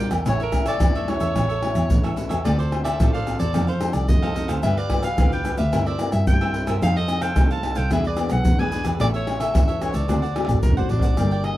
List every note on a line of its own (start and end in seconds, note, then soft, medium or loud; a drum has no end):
0.00 0.24 A#2 medium
0.00 0.14 G3 medium
0.00 0.14 D4 medium
0.00 0.11 F4 soft
0.00 0.14 F4 medium
0.00 0.11 A#4 medium
0.00 0.11 D5 medium
0.00 0.12 G5 medium
0.11 0.23 E2 medium
0.11 0.25 A#4 soft
0.11 0.25 D5 medium
0.11 0.24 G5 medium
0.11 pandeiro medium
0.11 tamborim medium
0.11 shaker medium
0.26 0.72 A1 loud
0.26 0.78 A2 medium
0.26 0.42 A3 medium
0.26 0.42 C#4 medium
0.26 0.39 E4 soft
0.26 0.43 E4 medium
0.26 0.39 A4 medium
0.26 0.39 C#5 medium
0.26 0.40 C#5 medium
0.26 0.39 E5 medium
0.26 pandeiro medium
0.26 tamborim medium
0.26 shaker medium
0.26 surdo medium
0.40 0.52 A4 medium
0.40 0.67 A#4 medium
0.40 0.52 C#5 medium
0.40 0.53 E5 medium
0.40 pandeiro soft
0.40 shaker soft
0.52 0.76 A3 soft
0.52 0.76 C#4 medium
0.52 0.77 E4 medium
0.52 muted cavaquinho stroke soft
0.52 pandeiro medium
0.52 tamborim medium
0.52 shaker medium
0.52 surdo medium
0.66 0.79 A4 medium
0.66 0.79 C#5 medium
0.66 1.11 D5 medium
0.66 0.79 E5 medium
0.66 pandeiro medium
0.66 tamborim medium
0.66 shaker medium
0.80 1.16 E2 medium
0.80 1.33 E3 medium
0.80 1.04 A3 medium
0.80 1.04 C#4 medium
0.80 0.93 E4 soft
0.80 1.04 E4 medium
0.80 0.93 A4 soft
0.80 0.94 C#5 medium
0.80 0.94 E5 medium
0.80 pandeiro medium
0.80 tamborim medium
0.80 shaker medium
0.80 surdo loud
0.95 1.21 A4 medium
0.95 1.20 C#5 medium
0.95 1.19 E5 medium
0.95 pandeiro soft
0.95 shaker soft
1.08 1.43 A3 medium
1.08 1.43 C#4 medium
1.08 1.44 E4 medium
1.08 2.18 C#5 medium
1.08 pandeiro medium
1.08 tamborim medium
1.20 1.35 E2 medium
1.20 1.35 A4 medium
1.20 1.34 C#5 medium
1.20 1.34 E5 medium
1.20 pandeiro medium
1.20 shaker medium
1.36 1.71 A1 loud
1.36 1.88 A2 medium
1.36 1.48 E4 soft
1.36 1.49 A4 medium
1.36 1.49 C#5 medium
1.36 1.48 E5 medium
1.36 pandeiro medium
1.36 tamborim medium
1.36 shaker medium
1.36 surdo medium
1.49 1.61 A4 medium
1.49 1.61 C#5 medium
1.49 1.61 E5 medium
1.49 pandeiro soft
1.49 shaker soft
1.62 1.89 A3 medium
1.62 1.89 C#4 medium
1.62 1.89 E4 medium
1.62 muted cavaquinho stroke soft
1.62 pandeiro medium
1.62 tamborim medium
1.75 1.88 E2 medium
1.75 pandeiro medium
1.75 tamborim medium
1.75 shaker medium
1.90 2.26 A1 medium
1.90 2.43 E3 medium
1.90 pandeiro medium
1.90 shaker medium
1.90 surdo loud
2.03 2.14 A3 medium
2.03 2.14 C#4 medium
2.03 2.14 E4 medium
2.03 2.15 A4 medium
2.03 2.17 C#5 medium
2.03 2.16 E5 medium
2.03 pandeiro soft
2.03 tamborim medium
2.03 shaker soft
2.16 2.34 A3 medium
2.16 2.34 C#4 medium
2.16 2.29 E4 soft
2.16 2.34 E4 medium
2.16 2.30 A4 medium
2.16 2.28 C#5 medium
2.16 2.28 E5 medium
2.16 pandeiro medium
2.16 shaker medium
2.29 2.43 E2 medium
2.29 2.44 A4 medium
2.29 2.43 C#5 medium
2.29 2.43 E5 medium
2.29 pandeiro medium
2.29 tamborim medium
2.29 shaker medium
2.44 2.92 D2 loud
2.44 2.97 D3 medium
2.44 2.96 C4 medium
2.44 2.58 F4 medium
2.44 2.96 F4 soft
2.44 2.58 A4 medium
2.44 2.96 A4 medium
2.44 2.58 C5 medium
2.44 2.57 D5 medium
2.44 pandeiro medium
2.44 tamborim medium
2.44 shaker medium
2.44 surdo medium
2.59 2.71 A4 soft
2.59 2.72 C5 medium
2.59 2.83 C5 medium
2.59 2.71 D5 medium
2.59 pandeiro soft
2.59 shaker soft
2.72 muted cavaquinho stroke soft
2.72 pandeiro medium
2.72 tamborim medium
2.84 2.99 A4 medium
2.84 2.98 C5 medium
2.84 2.98 D5 medium
2.84 3.10 E5 medium
2.84 pandeiro medium
2.84 tamborim medium
2.84 shaker medium
3.00 3.35 A1 medium
3.00 3.52 A2 medium
3.00 3.16 C4 medium
3.00 3.13 F4 soft
3.00 3.16 F4 medium
3.00 3.13 A4 medium
3.00 3.16 A4 medium
3.00 3.13 C5 medium
3.00 3.13 D5 medium
3.00 pandeiro medium
3.00 tamborim medium
3.00 shaker medium
3.00 surdo loud
3.13 3.40 A4 medium
3.13 3.39 C5 medium
3.13 3.38 D5 medium
3.13 3.39 F5 medium
3.13 pandeiro soft
3.13 shaker soft
3.27 3.45 C4 medium
3.27 3.45 F4 medium
3.27 3.45 A4 medium
3.27 pandeiro medium
3.27 tamborim medium
3.27 shaker medium
3.39 3.54 E2 medium
3.39 3.52 A4 medium
3.39 3.53 C5 medium
3.39 3.53 D5 medium
3.39 3.66 D5 medium
3.39 pandeiro medium
3.39 shaker medium
3.53 3.89 F2 loud
3.53 4.06 F3 medium
3.53 3.70 C4 medium
3.53 3.66 D#4 soft
3.53 3.71 D#4 medium
3.53 3.67 A4 soft
3.53 3.71 A4 medium
3.53 3.67 C5 medium
3.53 3.66 F5 medium
3.53 pandeiro medium
3.53 tamborim medium
3.53 shaker medium
3.53 surdo medium
3.67 3.80 A4 soft
3.67 3.81 C5 medium
3.67 3.95 C5 medium
3.67 3.80 F5 medium
3.67 pandeiro soft
3.67 shaker soft
3.80 4.18 C4 medium
3.80 4.18 D#4 medium
3.80 4.18 A4 medium
3.80 muted cavaquinho stroke soft
3.80 pandeiro medium
3.80 tamborim medium
3.80 shaker medium
3.93 4.06 C2 medium
3.93 4.10 D5 medium
3.93 pandeiro medium
3.93 tamborim medium
3.93 shaker medium
4.08 4.44 F2 medium
4.08 4.61 C3 medium
4.08 4.50 D#5 medium
4.08 pandeiro medium
4.08 shaker medium
4.08 surdo loud
4.22 4.32 C4 medium
4.22 4.33 D#4 medium
4.22 4.34 A4 medium
4.22 4.33 A4 medium
4.22 4.34 C5 medium
4.22 4.35 F5 medium
4.22 pandeiro soft
4.22 tamborim medium
4.22 shaker soft
4.34 4.59 C4 medium
4.34 4.48 D#4 medium
4.34 4.60 D#4 medium
4.34 4.48 A4 medium
4.34 4.59 A4 medium
4.34 4.48 C5 medium
4.34 4.47 F5 medium
4.34 pandeiro medium
4.34 shaker medium
4.48 4.61 D2 medium
4.48 4.62 A4 medium
4.48 4.62 C5 medium
4.48 4.61 F5 medium
4.48 pandeiro medium
4.48 tamborim medium
4.48 shaker medium
4.63 5.10 G2 loud
4.63 5.16 G3 medium
4.63 4.76 D4 soft
4.63 4.80 D4 medium
4.63 4.80 F4 medium
4.63 4.76 G4 medium
4.63 4.76 B4 medium
4.63 4.80 B4 medium
4.63 4.79 E5 loud
4.63 4.76 F5 medium
4.63 pandeiro medium
4.63 tamborim medium
4.63 shaker medium
4.63 surdo medium
4.77 4.89 G4 medium
4.77 4.89 B4 medium
4.77 5.03 D5 medium
4.77 4.89 F5 medium
4.77 pandeiro soft
4.77 shaker soft
4.90 5.07 D4 soft
4.90 5.07 F4 medium
4.90 5.07 B4 medium
4.90 muted cavaquinho stroke soft
4.90 pandeiro medium
4.90 tamborim medium
4.90 surdo medium
5.02 5.17 G4 medium
5.02 5.16 B4 medium
5.02 5.16 F5 medium
5.02 5.29 F5 medium
5.02 pandeiro medium
5.02 tamborim medium
5.02 shaker medium
5.18 5.53 D2 medium
5.18 5.70 D3 medium
5.18 5.30 D4 medium
5.18 5.41 D4 medium
5.18 5.42 F4 medium
5.18 5.31 G4 medium
5.18 5.31 B4 soft
5.18 5.42 B4 medium
5.18 5.31 F5 medium
5.18 pandeiro medium
5.18 tamborim medium
5.18 shaker medium
5.18 surdo loud
5.32 5.58 G4 medium
5.32 5.58 B4 medium
5.32 5.57 F5 medium
5.32 5.58 G5 medium
5.32 pandeiro soft
5.32 shaker soft
5.45 5.61 D4 medium
5.45 5.61 F4 medium
5.45 5.61 B4 medium
5.45 pandeiro medium
5.45 tamborim medium
5.45 shaker medium
5.58 5.72 D2 medium
5.58 5.72 G4 medium
5.58 5.72 B4 medium
5.58 5.88 E5 medium
5.58 5.71 F5 medium
5.58 pandeiro medium
5.58 shaker medium
5.72 6.08 G2 medium
5.72 6.25 G3 medium
5.72 5.96 C4 medium
5.72 5.85 E4 soft
5.72 5.96 E4 medium
5.72 5.85 A#4 medium
5.72 5.96 A#4 medium
5.72 5.86 C5 medium
5.72 5.86 E5 medium
5.72 pandeiro medium
5.72 tamborim medium
5.72 shaker medium
5.72 surdo medium
5.86 5.99 A#4 medium
5.86 6.00 C5 medium
5.86 6.12 D5 medium
5.86 5.99 E5 medium
5.86 pandeiro soft
5.86 shaker soft
5.99 6.37 C4 medium
5.99 6.37 E4 medium
5.99 6.37 A#4 medium
5.99 muted cavaquinho stroke soft
5.99 pandeiro medium
5.99 tamborim medium
5.99 shaker medium
6.12 6.25 G2 loud
6.12 6.26 E5 medium
6.12 pandeiro medium
6.12 tamborim medium
6.12 shaker medium
6.27 6.63 G2 medium
6.27 6.79 G3 medium
6.27 6.65 G5 loud
6.27 pandeiro medium
6.27 shaker medium
6.27 surdo loud
6.41 6.77 C4 medium
6.41 6.78 E4 medium
6.41 6.78 A#4 medium
6.41 6.54 A#4 medium
6.41 6.54 C5 medium
6.41 6.54 E5 medium
6.41 pandeiro soft
6.41 tamborim medium
6.41 shaker soft
6.54 6.67 E4 soft
6.54 6.67 A#4 medium
6.54 6.68 C5 medium
6.54 6.67 E5 medium
6.54 pandeiro medium
6.67 6.79 G2 medium
6.67 6.81 A#4 medium
6.67 6.81 C5 medium
6.67 6.81 E5 medium
6.67 pandeiro medium
6.67 tamborim medium
6.67 shaker medium
6.81 7.28 F2 loud
6.81 7.33 F3 medium
6.81 6.98 C4 medium
6.81 6.98 D#4 medium
6.81 6.95 D#4 medium
6.81 6.98 A4 medium
6.81 6.95 A4 medium
6.81 6.95 C5 medium
6.81 6.98 F5 loud
6.81 6.95 F5 medium
6.81 pandeiro medium
6.81 tamborim medium
6.81 shaker medium
6.81 surdo medium
6.96 7.08 A4 soft
6.96 7.08 C5 medium
6.96 7.23 D#5 loud
6.96 7.09 F5 medium
6.96 pandeiro soft
6.96 shaker soft
7.08 7.31 C4 medium
7.08 7.31 D#4 medium
7.08 7.32 A4 medium
7.08 muted cavaquinho stroke soft
7.08 pandeiro medium
7.08 tamborim medium
7.08 shaker medium
7.21 7.35 A4 medium
7.21 7.35 C5 medium
7.21 7.35 F5 medium
7.21 7.49 G5 loud
7.21 pandeiro medium
7.21 tamborim medium
7.21 shaker medium
7.36 7.72 C2 medium
7.36 7.88 C3 medium
7.36 7.59 C4 medium
7.36 7.49 D#4 medium
7.36 7.59 D#4 medium
7.36 7.49 A4 medium
7.36 7.60 A4 medium
7.36 7.49 C5 medium
7.36 7.50 F5 medium
7.36 pandeiro medium
7.36 tamborim medium
7.36 shaker medium
7.36 surdo loud
7.50 7.76 A4 medium
7.50 7.75 C5 medium
7.50 7.75 F5 medium
7.50 7.78 A5 medium
7.50 pandeiro soft
7.50 shaker soft
7.63 7.81 C4 medium
7.63 7.81 D#4 medium
7.63 7.81 A4 medium
7.63 pandeiro medium
7.63 tamborim medium
7.75 7.91 C2 medium
7.75 7.90 A4 medium
7.75 7.89 C5 medium
7.75 7.89 F5 medium
7.75 7.91 G5 loud
7.75 pandeiro medium
7.75 shaker medium
7.91 8.26 E2 medium
7.91 8.43 E3 medium
7.91 8.07 B3 medium
7.91 8.07 D4 medium
7.91 8.04 E4 medium
7.91 8.07 G#4 medium
7.91 8.04 G#4 soft
7.91 8.05 B4 medium
7.91 8.05 D5 medium
7.91 8.08 E5 loud
7.91 pandeiro medium
7.91 tamborim medium
7.91 shaker medium
7.91 surdo medium
8.04 8.18 B4 medium
8.04 8.18 D5 medium
8.04 8.33 D5 medium
8.04 pandeiro soft
8.04 shaker soft
8.08 8.18 G#4 soft
8.17 8.54 B3 medium
8.17 8.54 D4 medium
8.17 8.55 G#4 medium
8.17 muted cavaquinho stroke soft
8.17 pandeiro medium
8.17 tamborim medium
8.17 shaker medium
8.30 8.43 B1 loud
8.30 8.61 F#5 loud
8.30 pandeiro medium
8.30 tamborim medium
8.30 shaker medium
8.45 8.81 E2 medium
8.45 8.97 B2 medium
8.45 pandeiro medium
8.45 shaker medium
8.45 surdo loud
8.59 8.69 B3 medium
8.59 8.69 D4 medium
8.59 8.69 G#4 medium
8.59 8.70 G#4 medium
8.59 8.71 B4 medium
8.59 8.72 D5 medium
8.59 8.87 G#5 medium
8.59 pandeiro soft
8.59 tamborim medium
8.59 shaker soft
8.71 8.89 B3 medium
8.71 8.89 D4 medium
8.71 8.85 E4 soft
8.71 8.85 G#4 medium
8.71 8.89 G#4 medium
8.71 8.85 B4 medium
8.71 8.84 D5 medium
8.71 pandeiro medium
8.71 shaker medium
8.85 8.97 E2 medium
8.85 8.99 G#4 medium
8.85 8.99 B4 medium
8.85 8.98 D5 medium
8.85 pandeiro medium
8.85 tamborim medium
8.85 shaker medium
9.00 9.46 A1 loud
9.00 9.52 A3 medium
9.00 9.23 C#4 soft
9.00 9.13 E4 medium
9.00 9.23 E4 medium
9.00 9.13 A4 medium
9.00 9.23 A4 medium
9.00 9.13 C#5 medium
9.00 9.07 D5 medium
9.00 9.13 E5 medium
9.00 pandeiro medium
9.00 tamborim medium
9.00 shaker medium
9.00 surdo medium
9.14 9.27 A4 soft
9.14 9.40 C#5 medium
9.14 9.27 C#5 medium
9.14 9.26 E5 medium
9.14 pandeiro soft
9.14 shaker soft
9.27 9.43 C#4 medium
9.27 9.43 E4 medium
9.27 9.43 A4 medium
9.27 muted cavaquinho stroke soft
9.27 pandeiro medium
9.27 tamborim medium
9.40 9.53 A4 medium
9.40 9.53 C#5 medium
9.40 9.53 E5 medium
9.40 9.84 E5 loud
9.40 pandeiro medium
9.40 tamborim medium
9.40 shaker medium
9.54 9.89 E2 medium
9.54 10.06 E3 medium
9.54 9.77 C#4 medium
9.54 9.67 E4 soft
9.54 9.77 E4 medium
9.54 9.67 A4 medium
9.54 9.78 A4 medium
9.54 9.68 C#5 medium
9.54 9.66 E5 medium
9.54 pandeiro medium
9.54 tamborim medium
9.54 shaker medium
9.54 surdo loud
9.68 9.93 A4 medium
9.68 9.93 C#5 medium
9.68 9.92 E5 medium
9.68 pandeiro soft
9.68 shaker soft
9.81 10.07 C#4 medium
9.81 10.07 E4 medium
9.81 10.07 A4 medium
9.81 9.96 C#5 medium
9.81 pandeiro medium
9.81 tamborim medium
9.81 shaker medium
9.93 10.08 C#2 medium
9.93 10.07 A4 medium
9.93 10.07 C#5 medium
9.93 10.62 D5 medium
9.93 10.07 E5 medium
9.93 pandeiro medium
9.93 shaker medium
10.08 10.43 D2 medium
10.08 10.61 D3 medium
10.08 10.25 C4 medium
10.08 10.21 D4 soft
10.08 10.26 F#4 medium
10.08 10.26 A4 medium
10.08 10.21 C5 medium
10.08 10.21 D5 medium
10.08 10.21 F#5 medium
10.08 pandeiro medium
10.08 tamborim medium
10.08 shaker medium
10.08 surdo medium
10.22 10.34 C5 soft
10.22 10.34 D5 medium
10.22 10.34 F#5 medium
10.22 pandeiro soft
10.22 shaker soft
10.35 10.46 C4 medium
10.35 10.46 F#4 medium
10.35 10.46 A4 medium
10.35 muted cavaquinho stroke soft
10.35 pandeiro medium
10.35 tamborim medium
10.45 10.60 A1 loud
10.45 pandeiro medium
10.45 tamborim medium
10.45 shaker medium
10.49 10.72 C4 medium
10.49 10.73 F#4 medium
10.49 10.73 A4 medium
10.54 surdo medium
10.63 10.88 C2 medium
10.63 11.16 A2 medium
10.63 10.76 A#4 medium
10.63 pandeiro medium
10.63 shaker medium
10.63 surdo loud
10.72 surdo medium
10.77 11.14 C4 medium
10.77 11.15 F#4 medium
10.77 11.15 A4 medium
10.77 10.91 C5 medium
10.77 10.89 C5 medium
10.77 10.90 D5 medium
10.77 10.90 F#5 medium
10.77 pandeiro soft
10.77 shaker soft
10.81 surdo medium
10.89 11.15 A1 medium
10.89 11.03 D4 medium
10.89 11.03 C5 medium
10.89 11.46 D5 medium
10.89 11.03 D5 medium
10.89 11.02 F#5 medium
10.89 pandeiro medium
10.99 11.16 F#5 medium
10.99 pandeiro medium
10.99 shaker medium
10.99 surdo medium
11.04 11.17 C5 soft
11.04 11.17 D5 medium
11.09 surdo medium
11.17 11.53 G1 loud
11.17 11.57 G3 soft
11.17 11.55 A#3 medium
11.17 11.30 D4 soft
11.17 11.55 D4 soft
11.17 11.31 A#4 medium
11.17 11.56 A#4 medium
11.17 11.31 D5 medium
11.17 11.31 G5 medium
11.17 pandeiro medium
11.17 tamborim medium
11.17 shaker medium
11.17 surdo soft
11.31 11.44 A#4 soft
11.31 11.44 D5 medium
11.31 11.44 G5 medium
11.31 pandeiro soft
11.31 shaker soft
11.44 11.57 D#5 medium
11.44 pandeiro medium
11.44 tamborim medium